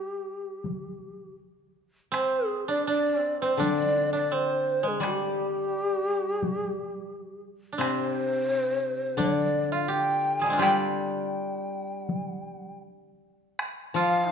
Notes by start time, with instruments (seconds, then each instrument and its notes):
Already playing: koto G3, shakuhachi G4
0.64 taiko high
2.12 koto C4, shakuhachi C5, taiko rim
2.48 shakuhachi G#4
2.68 koto D4, shakuhachi D5
2.87 koto D4, shakuhachi D5
3.20 koto C4
3.42 koto C4, shakuhachi C5
3.57 koto D3 D4, shakuhachi D5, taiko high
4.13 koto D4, shakuhachi D5
4.31 koto C4, shakuhachi C5
4.83 koto G#3
4.88 shakuhachi G#4
5.00 koto G3, taiko rim
5.05 shakuhachi G4
6.43 taiko high
7.72 koto D4
7.78 koto C3 C4, taiko rim
7.82 shakuhachi C5
9.17 koto D3 D4, shakuhachi D5, taiko high
9.72 koto F4, shakuhachi F5
9.88 koto G4, shakuhachi G5
10.39 koto F3 G3 G#4
10.43 koto G#3, shakuhachi G#5
10.50 koto C4 D4
10.57 koto G3 F4 G4
10.62 shakuhachi G5, taiko rim
12.09 taiko high
13.59 taiko rim
13.94 koto F3 F4, shakuhachi F5